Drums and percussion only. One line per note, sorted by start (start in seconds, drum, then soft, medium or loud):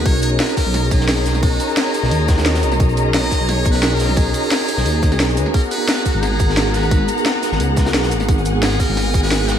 0.06 kick loud
0.06 closed hi-hat loud
0.06 closed hi-hat medium
0.15 closed hi-hat soft
0.21 closed hi-hat medium
0.21 shaker medium
0.40 snare loud
0.40 closed hi-hat loud
0.40 closed hi-hat medium
0.49 closed hi-hat soft
0.56 kick medium
0.56 snare medium
0.56 closed hi-hat medium
0.56 open hi-hat medium
0.56 shaker medium
0.74 snare soft
0.74 closed hi-hat medium
0.91 kick loud
0.91 closed hi-hat medium
0.91 shaker medium
1.00 snare soft
1.09 snare loud
1.09 closed hi-hat loud
1.09 closed hi-hat medium
1.26 snare soft
1.26 closed hi-hat medium
1.26 open hi-hat medium
1.26 shaker medium
1.34 snare soft
1.34 closed hi-hat soft
1.42 kick loud
1.42 closed hi-hat medium
1.60 closed hi-hat medium
1.60 shaker medium
1.69 closed hi-hat soft
1.77 snare loud
1.77 closed hi-hat loud
1.94 closed hi-hat medium
1.94 open hi-hat medium
1.94 shaker medium
2.04 snare medium
2.11 closed hi-hat medium
2.29 kick loud
2.29 snare loud
2.29 closed hi-hat medium
2.29 shaker medium
2.38 snare loud
2.38 snare soft
2.38 closed hi-hat medium
2.45 snare loud
2.45 closed hi-hat medium
2.45 closed hi-hat loud
2.54 snare loud
2.54 closed hi-hat medium
2.63 closed hi-hat medium
2.63 open hi-hat medium
2.63 shaker medium
2.72 snare soft
2.72 closed hi-hat medium
2.80 kick loud
2.80 closed hi-hat loud
2.80 closed hi-hat medium
2.89 closed hi-hat soft
2.97 closed hi-hat medium
2.97 shaker medium
3.14 snare loud
3.14 closed hi-hat medium
3.23 closed hi-hat soft
3.31 kick medium
3.31 snare soft
3.31 closed hi-hat medium
3.31 open hi-hat medium
3.31 shaker medium
3.49 snare soft
3.49 closed hi-hat medium
3.65 kick loud
3.65 closed hi-hat medium
3.65 shaker medium
3.74 snare soft
3.83 snare loud
3.83 closed hi-hat loud
4.00 snare soft
4.00 closed hi-hat medium
4.00 open hi-hat medium
4.00 shaker medium
4.09 snare soft
4.09 closed hi-hat soft
4.16 kick loud
4.16 closed hi-hat loud
4.16 closed hi-hat medium
4.34 closed hi-hat medium
4.34 shaker medium
4.43 closed hi-hat soft
4.51 snare loud
4.51 closed hi-hat medium
4.69 closed hi-hat medium
4.69 open hi-hat medium
4.69 shaker medium
4.78 snare medium
4.86 closed hi-hat medium
4.86 closed hi-hat loud
5.02 kick loud
5.02 snare soft
5.02 closed hi-hat medium
5.02 shaker medium
5.12 snare soft
5.12 closed hi-hat soft
5.20 snare loud
5.20 closed hi-hat medium
5.29 closed hi-hat soft
5.37 closed hi-hat medium
5.37 open hi-hat medium
5.37 shaker medium
5.46 snare soft
5.54 kick loud
5.54 closed hi-hat medium
5.63 closed hi-hat soft
5.71 closed hi-hat medium
5.71 shaker medium
5.88 snare loud
5.88 closed hi-hat loud
5.88 closed hi-hat medium
5.97 closed hi-hat soft
6.05 kick medium
6.05 closed hi-hat medium
6.05 open hi-hat medium
6.05 shaker medium
6.23 snare soft
6.23 closed hi-hat medium
6.40 kick loud
6.40 closed hi-hat medium
6.40 shaker medium
6.50 snare soft
6.57 snare loud
6.57 closed hi-hat medium
6.74 snare soft
6.74 closed hi-hat medium
6.74 open hi-hat medium
6.74 shaker medium
6.83 snare soft
6.83 closed hi-hat soft
6.91 kick loud
6.91 closed hi-hat medium
7.09 closed hi-hat medium
7.09 shaker medium
7.18 closed hi-hat soft
7.25 snare loud
7.25 closed hi-hat loud
7.25 closed hi-hat medium
7.42 snare medium
7.42 closed hi-hat medium
7.42 open hi-hat medium
7.42 shaker medium
7.52 snare medium
7.60 closed hi-hat medium
7.60 closed hi-hat loud
7.76 kick loud
7.76 snare loud
7.76 closed hi-hat medium
7.76 shaker medium
7.86 snare loud
7.86 snare soft
7.86 closed hi-hat medium
7.94 snare loud
7.94 closed hi-hat medium
8.03 snare loud
8.03 closed hi-hat medium
8.11 closed hi-hat medium
8.11 open hi-hat medium
8.11 shaker medium
8.20 snare soft
8.20 closed hi-hat medium
8.29 kick loud
8.29 closed hi-hat medium
8.29 closed hi-hat loud
8.38 closed hi-hat soft
8.46 closed hi-hat medium
8.46 shaker medium
8.62 snare loud
8.62 closed hi-hat loud
8.80 kick medium
8.80 snare soft
8.80 closed hi-hat medium
8.80 open hi-hat medium
8.80 shaker medium
8.97 snare soft
8.97 closed hi-hat medium
9.14 kick loud
9.14 closed hi-hat medium
9.14 shaker medium
9.23 snare soft
9.31 snare loud
9.31 closed hi-hat loud
9.48 snare loud
9.48 closed hi-hat medium
9.48 open hi-hat medium
9.48 shaker medium